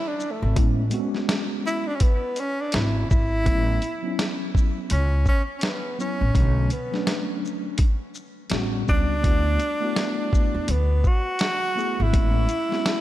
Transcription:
0.08 tenor saxophone D4
0.20 shaker
0.32 tenor saxophone A3
0.42 upright bass G#1
0.55 upright bass A1, tine electric piano G#3 B3 C#4 E4, kick, closed hi-hat
0.90 tine electric piano G#3 B3 C4 F#4, closed hi-hat, shaker
0.99 tine electric piano C#4
1.14 snare
1.29 snare, closed hi-hat
1.66 tenor saxophone E4, shaker
1.87 tenor saxophone D4
1.95 tenor saxophone C#4
2.00 tenor saxophone B3, kick, closed hi-hat
2.36 tenor saxophone C#4, closed hi-hat, shaker
2.61 tenor saxophone D4
2.72 upright bass G#1, tenor saxophone E4, snare, closed hi-hat
3.11 upright bass G#1, tenor saxophone E4, kick, shaker
3.44 upright bass A1, tine electric piano F#3 B3 C#4 E4, kick, closed hi-hat
3.82 closed hi-hat, shaker
4.02 tine electric piano F#3 B3 C#4 D#4
4.12 tine electric piano E4
4.19 snare, closed hi-hat
4.55 kick, shaker
4.90 upright bass C#2, tenor saxophone C#4, closed hi-hat
5.26 tenor saxophone C#4, kick, shaker
5.58 tenor saxophone C#4, closed hi-hat
5.63 tenor saxophone B3, snare
5.98 tine electric piano F#3 B3 C#4 E4, tenor saxophone C#4, shaker
6.21 upright bass A1
6.34 upright bass B1, tine electric piano D3 F#3 A3 C#4, kick, closed hi-hat
6.70 tenor saxophone B3, closed hi-hat, shaker
6.92 tine electric piano F#3 A3 C#4 D4, snare
7.07 snare, closed hi-hat
7.45 shaker
7.78 kick, closed hi-hat
8.15 shaker
8.50 upright bass A1, tine electric piano G3 B3 C#4 F#4, snare, closed hi-hat
8.85 upright bass C#2, tine electric piano G3 B3 C#4 F#4, tenor saxophone D4, kick, shaker
9.21 upright bass D2, tine electric piano A3 B3 E4 F#4, kick, closed hi-hat
9.60 closed hi-hat, shaker
9.80 tine electric piano A3 B3 E4 F#4
9.96 snare, closed hi-hat
10.33 kick, shaker
10.55 upright bass E2
10.68 upright bass D2, tenor saxophone B3, closed hi-hat
11.04 tenor saxophone F#4, kick, shaker
11.39 snare, closed hi-hat
11.75 tine electric piano A3 B3 E4 G#4, shaker
12.00 upright bass G#1, tenor saxophone E4
12.12 upright bass A1, tine electric piano G#3 B3 C#4 E4, kick, closed hi-hat
12.49 closed hi-hat, shaker
12.69 tine electric piano G#3 B3 C4 F#4, snare
12.78 tine electric piano C#4
12.86 snare, closed hi-hat

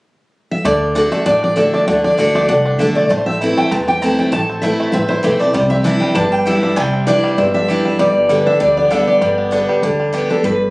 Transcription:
0.51 steel-string acoustic guitar E5
0.65 upright bass D2, steel-string acoustic guitar D3 D5, five-string banjo A3
0.95 steel-string acoustic guitar D3 A3 D4 F#4, five-string banjo D4
1.12 five-string banjo A3, steel-string acoustic guitar D4 F#4 E5
1.26 upright bass A1, steel-string acoustic guitar A2 D5, five-string banjo D4
1.42 five-string banjo D4, steel-string acoustic guitar D5
1.56 steel-string acoustic guitar D3 A3 D4 F#4 E5, five-string banjo D4
1.74 five-string banjo A3, steel-string acoustic guitar D5
1.87 upright bass D2, steel-string acoustic guitar D3 F#5, five-string banjo A3
2.04 five-string banjo D4, steel-string acoustic guitar D5
2.17 upright bass D2, steel-string acoustic guitar D3 A3 D4 F#4, five-string banjo D4
2.35 five-string banjo A3, steel-string acoustic guitar D5
2.48 upright bass C2, steel-string acoustic guitar A2 F#5, five-string banjo D4
2.66 five-string banjo D4
2.79 upright bass B1, steel-string acoustic guitar D3 A3 D4 F#4 E5, five-string banjo D4
2.95 five-string banjo A3, steel-string acoustic guitar D5
3.09 upright bass A1, steel-string acoustic guitar A2 C5, five-string banjo A3
3.26 five-string banjo C4, steel-string acoustic guitar E5
3.41 steel-string acoustic guitar E3 A3 C4 E4, five-string banjo E4
3.57 five-string banjo A3, steel-string acoustic guitar G5
3.71 upright bass E1, steel-string acoustic guitar E2 A5, five-string banjo C4
3.88 five-string banjo G4, steel-string acoustic guitar G5
4.02 steel-string acoustic guitar E3 A3 C4 E4 A5, five-string banjo C4
4.19 five-string banjo A3, steel-string acoustic guitar G5
4.32 upright bass A1, steel-string acoustic guitar A2 A5, five-string banjo A3
4.50 five-string banjo C4
4.62 steel-string acoustic guitar E3 A3 C4 E4 E5, five-string banjo E4
4.80 five-string banjo A3
4.92 upright bass A1, steel-string acoustic guitar E2 E5, five-string banjo C4
5.09 five-string banjo E4, steel-string acoustic guitar C5
5.23 upright bass B1, steel-string acoustic guitar E3 A3 C4 E4 E5, five-string banjo G4
5.39 five-string banjo A3, steel-string acoustic guitar C4 E4 D5
5.53 upright bass C2, steel-string acoustic guitar C3 C5, five-string banjo G3
5.70 five-string banjo C4, steel-string acoustic guitar E5
5.84 steel-string acoustic guitar E3 G3 D4 E4, five-string banjo D4
6.00 five-string banjo G3, steel-string acoustic guitar G5
6.15 upright bass G1, steel-string acoustic guitar G2 A5, five-string banjo D4
6.32 five-string banjo G3, steel-string acoustic guitar G5
6.46 steel-string acoustic guitar E3 G3 D4 E4 E5, five-string banjo G4
6.63 five-string banjo D4, steel-string acoustic guitar E5
6.76 upright bass C2, steel-string acoustic guitar C3 G5, five-string banjo G3
6.93 five-string banjo C4
7.07 steel-string acoustic guitar E3 G3 D4 E4 D5, five-string banjo D4
7.24 five-string banjo G3
7.38 upright bass G1, steel-string acoustic guitar G2 E5, five-string banjo C4
7.54 five-string banjo D4, steel-string acoustic guitar E5
7.68 steel-string acoustic guitar E3 G3 D4 E4, five-string banjo G4
7.85 five-string banjo G3, steel-string acoustic guitar E5
7.99 upright bass G1, steel-string acoustic guitar G2 D5, five-string banjo G3
8.29 steel-string acoustic guitar D3 G3 B3 G4, five-string banjo G3
8.46 five-string banjo D4, steel-string acoustic guitar E5
8.60 upright bass D2, steel-string acoustic guitar D3 D5, five-string banjo G3
8.77 five-string banjo B3, steel-string acoustic guitar D5
8.90 steel-string acoustic guitar D3 G3 B3 G4 E5, five-string banjo D4
9.07 five-string banjo G4, steel-string acoustic guitar D5
9.21 upright bass G1, steel-string acoustic guitar G2, five-string banjo G3
9.38 five-string banjo B3
9.51 steel-string acoustic guitar D3 G3 B3 G4, five-string banjo D4
9.69 five-string banjo G3
9.83 upright bass D2, steel-string acoustic guitar D3, five-string banjo D4
10.00 five-string banjo G3
10.13 steel-string acoustic guitar D3 G3 B3 G4, five-string banjo G4
10.30 steel-string acoustic guitar B3 G4 A4, five-string banjo D4
10.43 upright bass G1, steel-string acoustic guitar G2 B4

